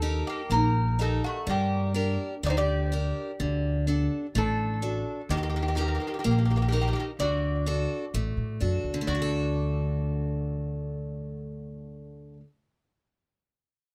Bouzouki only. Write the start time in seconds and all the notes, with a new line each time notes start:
Already playing: A4
0.27 G4
0.52 A#4
1.01 A4
1.24 F#4
1.50 G4
2.46 C5 D5
2.58 D5
4.38 A4
5.31 G4
5.37 G4
5.43 G4
5.50 G4
5.56 G4
5.63 G4
5.68 G4
5.76 G4
5.81 G4
5.88 G4
5.95 G4
6.00 G4
6.07 G4
6.14 G4
6.19 G4
6.25 G4
6.31 G4
6.38 G4
6.46 G4
6.51 G4
6.57 G4
6.62 G4
6.68 G4
6.75 G4
6.81 G4
6.88 G4
6.93 G4
7.00 G4
7.20 D5
9.07 D5